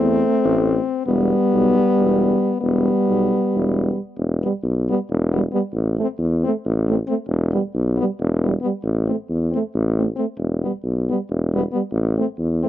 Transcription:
Already playing: tuba E2, euphonium A3, french horn C4
0.44 tuba A1
1.06 tuba E1, euphonium G3, french horn B3
1.53 tuba B1
1.99 tuba E1
2.61 tuba E1, euphonium G3, french horn B3
3.08 tuba B1
3.54 tuba E1
4.17 tuba E1
4.42 euphonium G3, french horn B3
4.63 tuba B1
4.89 euphonium G3, french horn B3
5.10 tuba E1
5.32 euphonium G3, french horn B3
5.52 euphonium G3, french horn B3
5.72 tuba A1
5.98 euphonium A3, french horn C4
6.18 tuba E2
6.43 euphonium A3, french horn C4
6.65 tuba A1
6.89 euphonium A3, french horn C4
7.07 euphonium A3, french horn C4
7.27 tuba E1
7.51 euphonium G3, french horn B3
7.74 tuba B1
7.97 french horn B3
8.01 euphonium G3
8.20 tuba E1
8.41 french horn B3
8.46 euphonium G3
8.61 euphonium G3, french horn B3
8.82 tuba A1
9.06 euphonium A3, french horn C4
9.29 tuba E2
9.51 french horn C4
9.55 euphonium A3
9.75 tuba A1
9.96 euphonium A3, french horn C4
10.16 euphonium A3, french horn C4
10.37 tuba E1
10.63 euphonium G3, french horn B3
10.83 tuba B1
11.09 euphonium G3, french horn B3
11.30 tuba E1
11.54 euphonium G3, french horn B3
11.72 euphonium G3, french horn B3
11.91 tuba A1
12.18 euphonium A3, french horn C4
12.38 tuba E2
12.63 euphonium A3, french horn C4

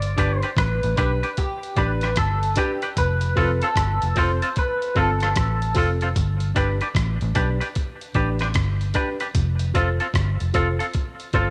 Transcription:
Already playing: fingered electric bass G1, clean electric guitar D5
0.02 closed hi-hat
0.16 fingered electric bass G1, grand piano D4 G4 B4, clean electric guitar D4 G4 B4, kick, closed hi-hat
0.38 clean electric guitar C5
0.43 clean electric guitar D4 G4 B4, closed hi-hat
0.57 fingered electric bass A1, clean electric guitar B4, kick, cross-stick, closed hi-hat
0.83 fingered electric bass A1, closed hi-hat
0.96 fingered electric bass B1, grand piano D4 G4 B4, clean electric guitar D4 G4 B4, kick, closed hi-hat
1.23 clean electric guitar D4 G4 B4, closed hi-hat
1.37 clean electric guitar G4, kick, closed hi-hat
1.63 closed hi-hat
1.76 fingered electric bass A1, grand piano D4 G4 B4, clean electric guitar D4 G4 B4, kick, closed hi-hat
2.01 clean electric guitar D4 G4 B4, cross-stick, closed hi-hat
2.16 fingered electric bass G1, clean electric guitar A4, kick, cross-stick, closed hi-hat
2.43 closed hi-hat
2.56 grand piano D4 G4 B4, clean electric guitar D4 G4 B4, kick, closed hi-hat
2.82 clean electric guitar D4 G4 B4, closed hi-hat
2.97 fingered electric bass F1, clean electric guitar B4, kick, closed hi-hat
3.21 closed hi-hat
3.36 fingered electric bass F1, grand piano C4 F4 A4, clean electric guitar C4 F4 A4, kick, open hi-hat
3.62 clean electric guitar C4 F4 A4, closed hi-hat
3.76 fingered electric bass G1, kick, cross-stick, closed hi-hat
4.02 fingered electric bass F1, closed hi-hat
4.15 fingered electric bass F1, grand piano C4 F4 A4, clean electric guitar C4 F4 A4 C5, kick, open hi-hat
4.42 clean electric guitar C4 F4 A4, closed hi-hat
4.56 clean electric guitar B4, kick, closed hi-hat
4.82 closed hi-hat
4.95 fingered electric bass G1, grand piano C4 F4 A4, clean electric guitar C4 F4 A4, kick, open hi-hat
5.20 clean electric guitar C4 F4 A4, cross-stick, closed hi-hat
5.36 fingered electric bass A1, kick, cross-stick, closed hi-hat
5.62 closed hi-hat
5.74 fingered electric bass F1, grand piano C4 F4 A4, clean electric guitar C4 F4 A4, kick, open hi-hat
6.01 clean electric guitar C4 F4 A4, closed hi-hat
6.16 fingered electric bass G1, kick, closed hi-hat
6.40 closed hi-hat
6.54 fingered electric bass G1, grand piano D4 G4 B4, clean electric guitar D4 G4 B4, kick, closed hi-hat
6.81 clean electric guitar D4 G4 B4, closed hi-hat
6.95 fingered electric bass A1, kick, cross-stick, closed hi-hat
7.21 fingered electric bass A1, closed hi-hat
7.35 fingered electric bass B1, grand piano D4 G4 B4, clean electric guitar D4 G4 B4, kick, closed hi-hat
7.61 clean electric guitar D4 G4 B4, closed hi-hat
7.75 kick, closed hi-hat
8.01 closed hi-hat
8.14 fingered electric bass A1, grand piano D4 G4 B4, clean electric guitar D4 G4 B4, kick, closed hi-hat
8.39 clean electric guitar D4 G4 B4, cross-stick, closed hi-hat
8.54 fingered electric bass G1, kick, cross-stick, closed hi-hat
8.81 closed hi-hat
8.94 grand piano D4 G4 B4, clean electric guitar D4 G4 B4, kick, closed hi-hat
9.20 clean electric guitar D4 G4 B4, closed hi-hat
9.35 fingered electric bass F1, kick, closed hi-hat
9.59 closed hi-hat
9.74 fingered electric bass F1, clean electric guitar C4 F4 A4, grand piano F4 A4 C5, kick, closed hi-hat
10.00 clean electric guitar C4 F4 A4, closed hi-hat
10.14 fingered electric bass G1, kick, cross-stick, closed hi-hat
10.40 fingered electric bass F1, closed hi-hat
10.54 fingered electric bass F1, clean electric guitar C4 F4 A4, grand piano F4 A4 C5, kick, closed hi-hat
10.79 clean electric guitar C4 F4 A4, closed hi-hat
10.94 kick, closed hi-hat
11.20 closed hi-hat
11.33 fingered electric bass G1, clean electric guitar C4 F4 A4, grand piano F4 A4 C5, kick, closed hi-hat

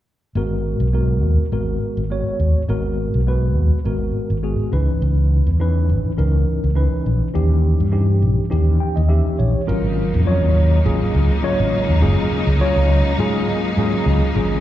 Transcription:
0.35 fretless electric bass G#1, tine electric piano G#3 B3 F#4 A#4
0.80 fretless electric bass B1
0.93 tine electric piano G#3 B3 F#4 A#4
1.23 fretless electric bass D#2
1.52 fretless electric bass G#1, tine electric piano G#3 B3 F#4 A#4
1.97 fretless electric bass G#1
2.10 tine electric piano G#3 B3 F#4 C#5
2.27 muted fretless electric bass stroke
2.40 fretless electric bass D#2
2.68 fretless electric bass G#1, tine electric piano G#3 B3 F#4 A#4
3.14 fretless electric bass B1
3.27 tine electric piano G#3 B3 F#4 B4
3.56 fretless electric bass D#2
3.85 fretless electric bass G#1, tine electric piano G#3 B3 F#4 A#4
4.30 fretless electric bass G#1
4.43 tine electric piano G#3 B3 F#4 G#4
4.59 muted fretless electric bass stroke
4.72 fretless electric bass C#2, tine electric piano E3 C#4 D#4 B4
5.02 fretless electric bass C#2
5.47 fretless electric bass E2
5.59 tine electric piano E3 C#4 D#4 B4
5.89 fretless electric bass G#1
6.17 fretless electric bass C#2, tine electric piano E3 C#4 D#4 A#4
6.64 fretless electric bass C#2
6.75 tine electric piano E3 C#4 D#4 B4
6.93 muted fretless electric bass stroke
7.06 fretless electric bass A#1
7.34 fretless electric bass D#2, tine electric piano E3 C#4 D#4 G4
7.80 fretless electric bass G2
7.92 tine electric piano E3 C#4 D#4 G4
8.22 fretless electric bass A#1
8.50 fretless electric bass D#2, tine electric piano E3 C#4 D#4 G4
8.80 tine electric piano G5
8.96 fretless electric bass D#2, tine electric piano D#5
9.08 tine electric piano E3 C#4 D#4 G4 E5
9.27 muted fretless electric bass stroke
9.39 fretless electric bass A#1, tine electric piano C#5
9.67 fretless electric bass G#1, string section C#3 G#3 A#3 D#4, tine electric piano F#3 C#4 F4 A#4
10.14 fretless electric bass F2
10.26 tine electric piano F#3 C#4 F4 C#5
10.43 fretless electric bass D#2
10.85 fretless electric bass G#1, tine electric piano F#3 C#4 F4 G#4
11.15 fretless electric bass C#2
11.43 tine electric piano F#3 C#4 F4 C#5, muted fretless electric bass stroke
11.60 fretless electric bass G#1
11.89 fretless electric bass D#2
12.01 fretless electric bass F#1, tine electric piano F#3 C#4 F4 G#4
12.31 muted fretless electric bass stroke
12.47 fretless electric bass C#2
12.60 tine electric piano F#3 C#4 F4 C#5, muted fretless electric bass stroke
12.76 fretless electric bass C#2
13.18 fretless electric bass G#2, tine electric piano F#3 C#4 F4 G#4
13.77 fretless electric bass G#2, tine electric piano F#3 C#4 F4 G#4
13.93 muted fretless electric bass stroke
14.06 fretless electric bass C#2
14.35 fretless electric bass G#1, tine electric piano F#3 C#4 F4 G#4

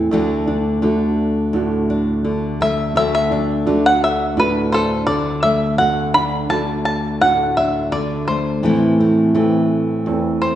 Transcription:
Already playing: nylon-string guitar A2 A3 E4, felt piano E3 C4, five-string banjo A4
0.11 nylon-string guitar D2 D3 A3 D4 F#4, felt piano A3
0.47 felt piano D4, nylon-string guitar D4
0.82 nylon-string guitar D3 A3, felt piano A3 D4 F#4
1.53 nylon-string guitar A2, felt piano A3 D4 F#4
1.90 nylon-string guitar D4
2.24 nylon-string guitar D3, felt piano A3
2.61 nylon-string guitar A3, five-string banjo E5
2.95 nylon-string guitar D2 D3 A3 D4 F#4, felt piano A3, five-string banjo E5
3.15 five-string banjo E5
3.30 felt piano D4, nylon-string guitar D4
3.66 nylon-string guitar D3 A3, felt piano A3 D4 F#4
3.86 five-string banjo F#5
4.04 five-string banjo E5
4.36 nylon-string guitar A2, felt piano A3 D4 F#4, five-string banjo B4
4.72 nylon-string guitar D4, five-string banjo A4 C5
5.07 nylon-string guitar D3, felt piano A3, five-string banjo D5
5.43 nylon-string guitar A3, five-string banjo E5
5.78 nylon-string guitar D2 F#4, felt piano A3, five-string banjo F#5
6.14 felt piano D4, nylon-string guitar D4, five-string banjo B5
6.49 nylon-string guitar D3 A3, felt piano A3 D4 F#4, five-string banjo A5
6.85 five-string banjo A5
7.21 nylon-string guitar A2, felt piano A3 D4 F#4, five-string banjo F#5
7.57 nylon-string guitar D4, five-string banjo E5
7.92 nylon-string guitar D3, felt piano A3, five-string banjo D5
8.28 nylon-string guitar A3, five-string banjo C5
8.63 nylon-string guitar A2 E3 A3 C4 E4, felt piano E3
8.99 felt piano A3, nylon-string guitar C4
9.34 felt piano E3 A3 C4, nylon-string guitar E3 A3
10.06 nylon-string guitar E2, felt piano E3 A3 C4
10.42 nylon-string guitar C4, five-string banjo C5

